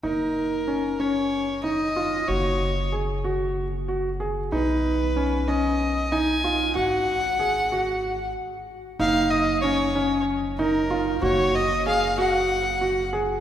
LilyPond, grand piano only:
\new Staff \with { instrumentName = "Grand piano" } { \time 7/8 \key fis \major \tempo 4 = 94 dis'4 cis'8 cis'4 dis'8 eis'8 | fis'4 gis'8 fis'4 fis'8 gis'8 | dis'4 cis'8 cis'4 dis'8 eis'8 | fis'4 gis'8 fis'4 r4 |
dis'4 cis'8 cis'4 dis'8 eis'8 | fis'4 gis'8 fis'4 fis'8 gis'8 | }